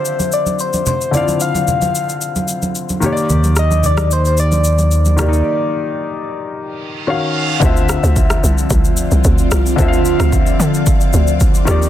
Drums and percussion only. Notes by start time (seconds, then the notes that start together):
0.05 shaker
0.20 high conga, shaker
0.32 shaker
0.46 high conga, shaker
0.59 shaker
0.73 high conga, shaker
0.86 low conga, shaker
1.01 shaker
1.14 low conga, shaker
1.28 high conga, shaker
1.40 shaker
1.55 high conga, shaker
1.68 low conga, shaker
1.82 high conga, shaker
1.95 shaker
2.09 shaker
2.21 shaker
2.36 high conga, shaker
2.48 shaker
2.62 high conga, shaker
2.75 shaker
2.89 high conga, shaker
3.02 low conga, shaker
3.17 shaker
3.30 low conga, shaker
3.44 high conga, shaker
3.56 cross-stick, shaker
3.71 high conga, shaker
3.84 low conga, shaker
3.98 cross-stick, high conga, shaker
4.11 shaker
4.25 shaker
4.37 shaker
4.52 high conga, shaker
4.64 shaker
4.78 high conga, shaker
4.91 shaker
5.05 high conga, shaker
5.18 cross-stick, low conga, shaker
5.33 shaker
7.62 kick, shaker
7.77 shaker
7.89 cross-stick, shaker
8.04 shaker
8.16 kick, shaker
8.30 cross-stick, shaker
8.44 shaker
8.58 shaker
8.70 kick, shaker
8.85 shaker
8.97 shaker
9.11 shaker
9.24 kick, shaker
9.38 shaker
9.51 cross-stick, shaker
9.66 shaker
9.79 kick, shaker
9.93 shaker
10.05 shaker
10.20 cross-stick, shaker
10.32 kick, shaker
10.47 shaker
10.60 shaker
10.74 shaker
10.86 kick, shaker
11.01 shaker
11.13 shaker
11.27 shaker
11.40 kick, shaker
11.54 shaker
11.67 cross-stick, shaker
11.82 shaker